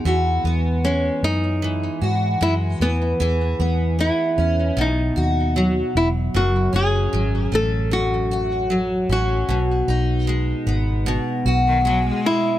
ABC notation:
X:1
M:4/4
L:1/16
Q:"Swing 16ths" 1/4=76
K:F#dor
V:1 name="Nylon-string guitar"
z4 C2 D4 z2 E2 B,2- | B,4 E4 D6 E2 | F2 G4 A2 F6 F2- | F6 z8 E2 |]
V:2 name="Steel-string acoustic guitar" clef=bass
[E,F]2 B,2 G,4 E,2 F2 G,2 E,2 | [E,G]2 B,2 B,2 C2 B,,2 F2 F,4 | F,,2 C2 F,2 A,2 F,,2 F2 F,2 C2 | B,,2 D2 G,2 B,2 B,,2 F2 G,4 |]
V:3 name="Cello" clef=bass
z16 | z16 | z16 | z8 z3 D, F, G,3 |]
V:4 name="Fingered electric bass" clef=bass
E,,2 E,,4 F,,4 G,,2 F,,2 E,,2 | E,,2 E,,3 z E,,2 B,,,2 D,,4 E,,,2 | F,,,2 F,,,2 G,,,2 A,,,8 A,,,2 | B,,,2 B,,,4 G,,,3 z B,,,4 z2 |]